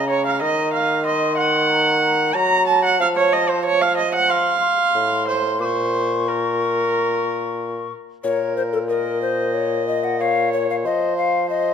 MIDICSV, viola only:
0, 0, Header, 1, 2, 480
1, 0, Start_track
1, 0, Key_signature, -5, "minor"
1, 0, Tempo, 647948
1, 300, Time_signature, 4, 2, 24, 8
1, 3180, Tempo, 658617
1, 6060, Tempo, 650054
1, 8640, End_track
2, 0, Start_track
2, 0, Title_t, "Viola"
2, 0, Program_c, 0, 41
2, 73, Note_on_c, 0, 73, 92
2, 184, Note_off_c, 0, 73, 0
2, 193, Note_on_c, 0, 77, 94
2, 304, Note_off_c, 0, 77, 0
2, 310, Note_on_c, 0, 75, 100
2, 538, Note_off_c, 0, 75, 0
2, 542, Note_on_c, 0, 77, 98
2, 777, Note_off_c, 0, 77, 0
2, 787, Note_on_c, 0, 75, 94
2, 1014, Note_off_c, 0, 75, 0
2, 1019, Note_on_c, 0, 78, 101
2, 1741, Note_on_c, 0, 82, 120
2, 1752, Note_off_c, 0, 78, 0
2, 1974, Note_off_c, 0, 82, 0
2, 1978, Note_on_c, 0, 81, 104
2, 2097, Note_off_c, 0, 81, 0
2, 2106, Note_on_c, 0, 78, 105
2, 2221, Note_off_c, 0, 78, 0
2, 2230, Note_on_c, 0, 77, 114
2, 2276, Note_off_c, 0, 77, 0
2, 2347, Note_on_c, 0, 73, 108
2, 2466, Note_on_c, 0, 75, 98
2, 2478, Note_off_c, 0, 73, 0
2, 2590, Note_on_c, 0, 72, 101
2, 2601, Note_off_c, 0, 75, 0
2, 2700, Note_off_c, 0, 72, 0
2, 2705, Note_on_c, 0, 73, 111
2, 2827, Note_on_c, 0, 77, 103
2, 2839, Note_off_c, 0, 73, 0
2, 2938, Note_off_c, 0, 77, 0
2, 2942, Note_on_c, 0, 75, 103
2, 3059, Note_off_c, 0, 75, 0
2, 3070, Note_on_c, 0, 78, 114
2, 3186, Note_on_c, 0, 77, 112
2, 3197, Note_off_c, 0, 78, 0
2, 3897, Note_off_c, 0, 77, 0
2, 3901, Note_on_c, 0, 72, 97
2, 4135, Note_off_c, 0, 72, 0
2, 4140, Note_on_c, 0, 72, 97
2, 4628, Note_on_c, 0, 70, 83
2, 4639, Note_off_c, 0, 72, 0
2, 5826, Note_off_c, 0, 70, 0
2, 6066, Note_on_c, 0, 70, 61
2, 6517, Note_off_c, 0, 70, 0
2, 6553, Note_on_c, 0, 75, 72
2, 7511, Note_on_c, 0, 73, 71
2, 7522, Note_off_c, 0, 75, 0
2, 7987, Note_on_c, 0, 72, 69
2, 7998, Note_off_c, 0, 73, 0
2, 8458, Note_off_c, 0, 72, 0
2, 8463, Note_on_c, 0, 72, 75
2, 8640, Note_off_c, 0, 72, 0
2, 8640, End_track
0, 0, End_of_file